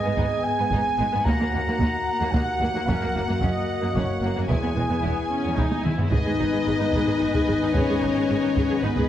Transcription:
Already playing: B3 G#4 D#5 G#5
0.03 G#2 B3
0.17 G#1 G#2 B3 D#4, taiko
0.45 G#5
0.58 G#2 B3
0.70 G#1 G#2 B3 D#4, taiko
0.97 G#1 G#2 G#3 B3
1.12 G#2 B3
1.24 D#2 A#3 D#4 F#4 F#5 A#5, taiko
1.40 D#2 A#3
1.52 D#2 A#3
1.66 D#2 A#3
1.79 D#2 A#3 D#4, taiko
2.20 D#2 A#3
2.32 D#2 A#3 D#4 F#5, taiko
2.60 D#2 A#3
2.74 D#2 A#3
2.86 F#1 F#2 A#3 C#4 A#4, taiko
3.01 F#2 A#3
3.13 F#1 F#2 A#3
3.27 F#2 A#3
3.40 F#1 F#2 A#3 C#4 D#5, taiko
3.81 F#2 A#3
3.94 F#1 F#2 A#3 C#4 C#5, taiko
4.20 F#1 F#2 A#3
4.35 F#2 A#3
4.48 E1 E2 B3 E4 G#4 G#5, taiko
4.53 B3 E4
4.62 E2 B3
4.75 E1 E2 G#3 B3
4.89 E2 B3
5.01 E1 E2 B3 E4, taiko
5.30 C#4
5.43 E2 B3
5.57 E1 E2 D#4 E4, taiko
5.71 taiko high
5.83 E1 E2 G#3 E4, taiko mid
5.97 E2 B3, taiko low
6.09 G#1 G#2 D#3 B3 D#4 G#4 B4 D#5 G#5, taiko
6.25 G#2 G#4
6.39 G#1 G#2 D#4
6.52 G#2 G#4
6.66 G#1 G#2 G#4
6.79 G#2 D#4
6.92 G#1 G#2 G#4, taiko
7.06 G#2 G#4
7.19 G#1 G#2 D#4
7.34 G#2 G#4, taiko
7.47 G#1 G#2 G#4
7.62 G#2 D#4
7.73 G#1 G#2 C#4 G#4 C#5, taiko
7.88 G#2 G#4
8.01 G#1 G#2 D#4
8.15 G#2 G#4
8.28 G#1 G#2 G#4
8.42 G#2 D#4
8.55 G#1 G#2 G#4, taiko
8.70 G#2 G#4
8.82 G#1 G#2 B3 D#4 B4
8.96 G#2 G#4, taiko

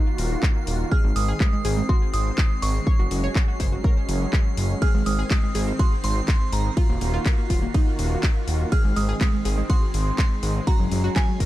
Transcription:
Already playing: D#3 A#3 D#4 F4 F#4 A#5 C7
0.18 D#1, open hi-hat
0.43 kick, clap
0.67 D#1, open hi-hat
0.91 G#3 C4 G#4 F6, kick
1.04 G#1 G#3
1.16 G#1 G#3 D#6, open hi-hat
1.28 G#4
1.40 G#3, kick, clap
1.53 G#3
1.65 G#1 G#4, open hi-hat
1.77 G#3
1.89 F#4 C6, kick
2.13 G#1 D#6, open hi-hat
2.38 kick, clap
2.62 G#1 C#6, open hi-hat
2.87 F#3 C#4 C#5, kick
2.99 F#1 F#4
3.11 F#1 F#4, open hi-hat
3.24 C#5
3.35 F#4, kick, clap
3.48 F#4
3.60 F#1 C5, kick, open hi-hat
3.72 F#4
3.84 A#4, kick
4.09 F#1, open hi-hat
4.33 kick, clap
4.57 F#1, open hi-hat
4.82 D#3 C4 G#4 F6, kick, ride
4.94 G#1 G#3
5.06 G#1 G#3 D#6, open hi-hat
5.19 G#4
5.31 G#3, kick, clap, ride
5.43 G#3
5.55 G#1 G#4, open hi-hat
5.67 G#3
5.79 F#4 C6, kick, ride
6.04 G#1 C6, open hi-hat
6.28 kick, clap, ride
6.52 G#1 A#5, open hi-hat
6.77 A#3 F4 F#4, kick, ride
6.89 D#1 A#3
7.01 D#1 A#3, open hi-hat
7.14 F4
7.26 A#3, kick, clap, ride
7.38 A#3
7.50 D#1 F4, kick, open hi-hat
7.62 A#3
7.74 D#4, kick, ride
7.99 D#1, open hi-hat
8.23 kick, clap, ride
8.48 D#1, open hi-hat
8.72 G#3 C4 G#4 F6, kick, ride
8.84 G#1 G#3
8.96 G#1 G#3 D#6, open hi-hat
9.09 G#4
9.21 G#3, kick, clap, ride
9.33 G#3
9.45 G#1 G#4, open hi-hat
9.58 G#3
9.70 F#4 C6, kick, ride
9.94 G#1, open hi-hat
10.18 C6, kick, clap, ride
10.43 G#1, open hi-hat
10.67 F#3 C#4 F#4 A#5, kick, ride
10.80 F#1 F#3
10.92 F#1 F#3, open hi-hat
11.04 F#4
11.16 F#3 G#5, kick, clap, ride
11.28 F#3
11.40 F#1 A#4, kick, open hi-hat

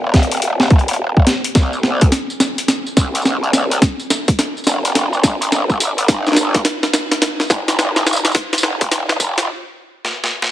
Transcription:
Already playing: D#1
0.14 D#1, kick, snare, closed hi-hat
0.23 closed hi-hat
0.32 closed hi-hat
0.37 closed hi-hat
0.42 closed hi-hat
0.60 snare
0.70 kick, closed hi-hat
0.79 closed hi-hat
0.88 closed hi-hat
0.93 closed hi-hat
0.99 D#1
1.17 kick
1.27 snare, closed hi-hat
1.44 closed hi-hat
1.55 C2, kick, snare, closed hi-hat, tambourine
1.73 tambourine
1.83 snare
2.01 kick, closed hi-hat, tambourine
2.12 snare, closed hi-hat, tambourine
2.30 tambourine
2.40 snare, tambourine
2.58 closed hi-hat, tambourine
2.68 snare, closed hi-hat, tambourine
2.87 tambourine
2.97 C2, kick, snare, closed hi-hat, tambourine
3.15 closed hi-hat, tambourine
3.22 snare, tambourine
3.25 tambourine
3.43 tambourine
3.53 snare, closed hi-hat, tambourine
3.71 closed hi-hat, tambourine
3.82 kick, snare, closed hi-hat, tambourine
4.00 tambourine
4.10 snare, tambourine
4.28 kick, closed hi-hat, tambourine
4.39 snare, closed hi-hat, tambourine
4.57 tambourine
4.64 snare, tambourine
4.67 F1, tambourine
4.85 closed hi-hat, tambourine
4.95 snare, closed hi-hat, tambourine
5.13 tambourine
5.23 G#1, kick, snare, closed hi-hat, tambourine
5.42 closed hi-hat, tambourine
5.52 snare, tambourine
5.70 kick, tambourine
5.80 closed hi-hat, tambourine
5.98 closed hi-hat, tambourine
6.08 G1, kick, snare, closed hi-hat, tambourine
6.27 snare, tambourine
6.28 snare
6.32 snare
6.35 snare
6.37 snare, tambourine
6.54 kick, snare, closed hi-hat
6.65 snare, closed hi-hat, tambourine
6.83 snare, tambourine
6.93 snare, tambourine
7.12 snare, closed hi-hat, tambourine
7.22 snare, closed hi-hat, tambourine
7.40 snare, tambourine
7.42 tambourine
7.45 tambourine
7.47 tambourine
7.49 G1, kick, snare, closed hi-hat, tambourine
7.50 tambourine
7.68 snare, closed hi-hat, tambourine
7.79 snare, tambourine
7.96 snare, tambourine
8.06 snare, tambourine
8.13 tambourine
8.16 tambourine
8.25 snare, closed hi-hat, tambourine
8.32 snare, closed hi-hat, tambourine
8.35 kick, tambourine
8.53 snare, closed hi-hat, tambourine
8.58 tambourine
8.63 F1, snare
8.81 kick, closed hi-hat, tambourine
8.92 snare, closed hi-hat, tambourine
9.09 snare, tambourine
9.20 F1, kick, closed hi-hat, tambourine
9.38 snare, closed hi-hat, tambourine
10.05 snare
10.24 snare
10.42 snare

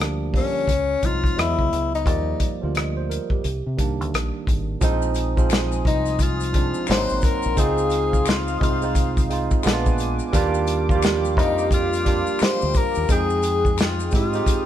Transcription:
Already playing: D2 F3 G3 A#3 D4
0.02 cross-stick
0.33 D3 F3 G3 A#3, kick, open hi-hat
0.37 C#4
0.68 C#2, kick, closed hi-hat
1.02 C2 F3 G#3 C4 D#4 F4, kick, closed hi-hat
1.24 kick, closed hi-hat
1.36 E2 F#3 G#3 B3 E4 D#5, cross-stick, closed hi-hat
1.59 C#2, kick
1.73 C#2, closed hi-hat
1.95 D#4, closed hi-hat
2.05 D#2 F3 G3 A#3 D5, kick, closed hi-hat
2.40 kick, closed hi-hat
2.61 D2 F3 G3 A#3 F4
2.75 D#5, cross-stick, closed hi-hat
2.97 C5
3.10 A#4, closed hi-hat
3.30 G4, kick
3.44 C2, closed hi-hat
3.66 C3
3.77 C2 D#3 G3 A#3 D4, kick, closed hi-hat
4.01 D2, closed hi-hat
4.14 A#1, cross-stick, closed hi-hat
4.47 G#1, kick, closed hi-hat
4.81 A#1 F3 G#3 C4 D#4 C5 G#5 D#6, kick, closed hi-hat, maracas
5.02 maracas
5.14 closed hi-hat, maracas
5.37 F3 G#3 C4 F4, kick, maracas
5.50 finger snap, snare, closed hi-hat, maracas
5.72 maracas
5.85 C2 D#4, kick, closed hi-hat
6.06 closed hi-hat, maracas
6.19 F4, kick, closed hi-hat, maracas
6.40 closed hi-hat, maracas
6.53 F3 G#3 C4 D4, kick, closed hi-hat
6.74 maracas
6.87 G#1 F#3 A#3 C4 D4 A#4 C5 F#5 C6, finger snap, snare, closed hi-hat, maracas
6.97 D#4
7.09 G#1, maracas
7.22 A#4, kick, closed hi-hat, maracas
7.42 A#1, maracas
7.56 C#2 G#3 C4 D#4 F4 G#4 C5 F5 D#6, kick, closed hi-hat, maracas
7.78 maracas
7.90 closed hi-hat, maracas
8.13 kick, maracas
8.26 F4, finger snap, snare, closed hi-hat, maracas
8.48 maracas
8.60 C2 G#3 C4 D#4 F4, kick, closed hi-hat
8.82 G#3 C4 D#4 F4, maracas
8.95 kick, closed hi-hat, maracas
9.17 kick, closed hi-hat, maracas
9.29 G#3 C4 D#4 F4, closed hi-hat
9.51 kick, maracas
9.63 A#1 G#3 B3 D4 E4 B4 G#5 D6, finger snap, snare, closed hi-hat, maracas
9.73 F4
9.86 kick, maracas
9.98 closed hi-hat, maracas
10.19 maracas
10.33 D#2 G3 A#3 D4 F4 G4 F5, kick, closed hi-hat, maracas
10.54 maracas
10.67 closed hi-hat, maracas
10.89 F3 A#3 F4 D5, kick, maracas
10.95 G3
11.02 finger snap, snare, closed hi-hat, maracas
11.25 maracas
11.37 F2 D#4, kick, closed hi-hat
11.58 maracas
11.71 F4, kick, closed hi-hat, maracas
11.93 closed hi-hat, maracas
12.05 G3 A#3 D4 F4, kick, closed hi-hat
12.27 maracas
12.39 finger snap, muted fingered electric bass stroke, snare, closed hi-hat, maracas
12.43 C5
12.62 D2, maracas
12.74 A#4, kick, closed hi-hat, maracas
12.95 D#2, maracas
13.09 F2 G#3 C4 D#4 G#4 G5 D#6, kick, closed hi-hat, maracas
13.30 maracas
13.42 closed hi-hat, maracas
13.65 kick, maracas
13.78 F4, finger snap, snare, closed hi-hat, maracas
14.00 maracas
14.11 G#2 G#3 C4 D#4 G4, kick, closed hi-hat, maracas
14.16 F4
14.33 G#3 C4 D#4 G4, closed hi-hat, maracas
14.46 kick, closed hi-hat, maracas

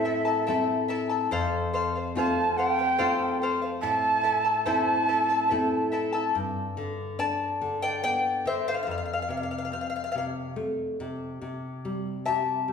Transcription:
Already playing: A2 A3 C4 E4 E5
0.05 E4 A4 E5 A5
0.25 E4 A4 A5
0.47 A3 C4 E4 A4 E5 A5
0.88 E4 A4 E5 A5
1.09 E4 A4 A5
1.31 F2 A4 C5 F5
1.73 A4 C5 F5
1.96 C5 F5
2.15 A3 C4 F4 A4 C5 F5 A5
2.57 A4 C5 F5 G5
2.79 C5 F5
2.98 A3 C4 F4 A4 C5 F5
3.42 A4 C5 F5
3.62 C5 F5
3.81 A2 E4 A4 E5 A5
4.23 E4 A4 E5 A5
4.45 E4 A4 A5
4.65 A3 C4 E4 A4 C5 E5 A5
5.08 E4 A4 E5 A5
5.30 E4 A4 A5
5.49 A3 C4 E4 A4 E5 A5
5.92 E4 A4 E5 A5
6.13 E4 A4 A5
6.35 G2
6.77 D3
7.19 D4 D5 A5
7.61 D3
7.82 D5 G5
8.03 B3 D5 G5
8.46 D3 C5 E5
8.68 C5 F5
8.74 F5
8.83 F2 F5
8.91 F5
8.98 F5
9.06 F5
9.13 F5
9.22 F5
9.29 C3 F5
9.37 F5
9.43 F5
9.51 F5
9.58 F5
9.65 F5
9.72 C4 F5
9.81 F5
9.90 F5
9.96 F5
10.04 F5
10.12 C3 F5
10.18 F5
10.56 A3
11.00 C3
11.42 C3
11.85 G3
12.26 G4 E5 A5
12.68 G3

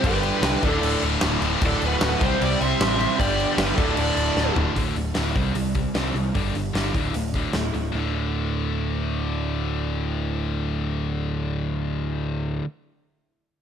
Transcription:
0.03 G1 G2 D3 G3 G4 B4, kick, crash
0.23 crash
0.41 C2, snare, crash
0.62 D1 D2 A2 D3 D4 A4, kick, crash
0.82 D1, crash
1.02 D1, crash
1.21 D1, snare, crash
1.42 D1 D2 A2 D3, crash
1.60 D1 D2 A2 D3, kick, crash
1.66 D4 A4
1.82 D1, crash
1.86 F#4 B4
2.01 D1, snare, crash
2.20 C2 C3 G3 C4, kick, crash
2.24 G4 C5
2.41 C2 G4 D5, crash
2.61 C2 C5 E5, crash
2.80 A1, snare, crash
2.98 C3 G3 C4, crash
3.17 G1 G2 D3 G3 G4 D5, kick, crash
3.40 crash
3.58 G1 G4 B4, snare, crash
3.76 D1 D2 A2 D3 D4 A4, kick, crash
3.95 D1 A4 D5, crash
4.16 D1, crash
4.36 D1, snare
4.55 D1 D2 A2 D3, floor tom
4.76 D1 D2 A2 D3, kick, open hi-hat
4.95 D1 D2 A2, open hi-hat
5.14 D1 D2 A2 D3, snare, open hi-hat
5.36 C2 C3 G3 C4, kick, open hi-hat
5.55 C2 C3 G3, open hi-hat
5.75 C3 G3, kick, open hi-hat
5.94 C2 C3 G3 C4, snare, open hi-hat
6.14 C2 C3 G3, open hi-hat
6.34 G1 G2 D3 G3, kick, open hi-hat
6.54 G1 G2 D3, open hi-hat
6.73 G1 G2 D3 G3, snare, open hi-hat
6.95 D1 D2 A2 D3, kick, open hi-hat
7.14 D1 D2 A2, open hi-hat
7.34 D2 A2 D3, kick, open hi-hat
7.53 D1 D2 A2, snare, open hi-hat
7.73 D1 D2 A2, open hi-hat
7.92 D1 D2 A2
7.96 D3

